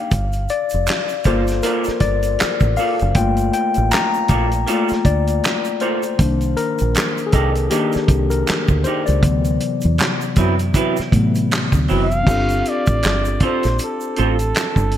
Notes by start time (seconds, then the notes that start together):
Already playing: A#3 D4 D#4 F5 G5
0.11 G1, kick, closed hi-hat, shaker
0.33 closed hi-hat, shaker
0.49 D5, closed hi-hat, shaker
0.70 closed hi-hat, shaker
0.74 F1
0.87 finger snap, snare, clap, closed hi-hat, shaker
1.09 closed hi-hat, shaker
1.24 G1 A#3 F4 A4 C5 D5, kick, closed hi-hat, shaker
1.47 snare, closed hi-hat, shaker
1.63 A#3 F4 A4 A#4 D5, closed hi-hat, shaker
1.84 snare, closed hi-hat, shaker
1.88 muted fingered electric bass stroke
2.00 G1 D5, kick, closed hi-hat, shaker
2.22 closed hi-hat, shaker
2.39 finger snap, muted fingered electric bass stroke, snare, clap, closed hi-hat, shaker
2.60 A1, kick, shaker
2.76 A#3 F4 A4 D5 F5, open hi-hat, shaker
2.99 F#1, closed hi-hat, shaker
3.14 G1 A3 A#3 F4 G5, kick, closed hi-hat, shaker
3.37 closed hi-hat, shaker
3.53 G5, closed hi-hat, shaker
3.74 A1, closed hi-hat, shaker
3.91 A#5, finger snap, snare, clap, closed hi-hat, shaker
4.14 shaker
4.28 A#1 A#3 F4 A4 D5, kick, closed hi-hat, shaker
4.51 closed hi-hat, shaker
4.67 A3 A#3 F4 A4 D5, closed hi-hat, shaker
4.89 muted fingered electric bass stroke, snare, closed hi-hat, shaker
5.05 D2 D5, kick, closed hi-hat, shaker
5.27 closed hi-hat, shaker
5.43 finger snap, snare, clap, closed hi-hat, shaker
5.65 closed hi-hat, shaker
5.80 A#3 F4 A4 C5 D5, closed hi-hat, shaker
6.03 closed hi-hat, shaker
6.19 C2 D#3 A#3 D4, kick, closed hi-hat, shaker
6.41 closed hi-hat, shaker
6.57 A#4, closed hi-hat, shaker
6.78 A#1, closed hi-hat, shaker
6.94 finger snap, snare, clap, closed hi-hat, shaker
7.18 closed hi-hat, shaker
7.27 G#4
7.32 C2 A#3 D#4 G4 A4 D5, kick, closed hi-hat, shaker
7.55 closed hi-hat, shaker
7.70 D#3 A#3 D4 D#4 G4 D5, closed hi-hat, shaker
7.92 muted fingered electric bass stroke, snare, closed hi-hat, shaker
8.08 C2, kick, closed hi-hat, shaker
8.30 A#4, closed hi-hat, shaker
8.47 finger snap, muted fingered electric bass stroke, snare, clap, closed hi-hat, shaker
8.68 D2, kick, shaker
8.84 A#3 D#4 G4 C5 D5, closed hi-hat, shaker
9.06 C#2 D5, closed hi-hat, shaker
9.22 D2 C3 E3 F#3 B3, kick, closed hi-hat, shaker
9.44 closed hi-hat, shaker
9.60 closed hi-hat, shaker
9.81 E2, closed hi-hat, shaker
9.98 finger snap, snare, clap, closed hi-hat, shaker
10.21 closed hi-hat, shaker
10.36 F#2 F#3 C4 E4 B4, kick, closed hi-hat, shaker
10.59 closed hi-hat, shaker
10.74 F#3 C4 E4 B4, kick, closed hi-hat, shaker
10.97 muted fingered electric bass stroke, snare, closed hi-hat, shaker
11.12 A2 C3 E3 F#3 B3, kick, closed hi-hat, shaker
11.35 closed hi-hat, shaker
11.51 finger snap, snare, clap, closed hi-hat, shaker
11.72 D2, kick, closed hi-hat, shaker
11.88 F#1 F#3 C4 E4 B4, open hi-hat, shaker
12.04 F5
12.11 closed hi-hat, shaker
12.23 C4 D4 G4, kick, crash
12.28 G1 F4 A4, shaker
12.48 closed hi-hat, shaker
12.65 D5, closed hi-hat, shaker
12.86 A1, kick, closed hi-hat, shaker
13.03 G1, finger snap, muted clean electric guitar stroke, snare, clap, closed hi-hat, shaker
13.25 closed hi-hat, shaker
13.40 C4 F4 A4 C5, kick, closed hi-hat
13.45 C5
13.63 A#1, snare, closed hi-hat, shaker
13.79 closed hi-hat, shaker
13.83 A4
14.01 shaker
14.16 A1 C4 F4 A4 C5, closed hi-hat, shaker
14.21 A4
14.39 closed hi-hat, shaker
14.54 finger snap, snare, clap, closed hi-hat, shaker
14.76 G1, kick, shaker
14.91 closed hi-hat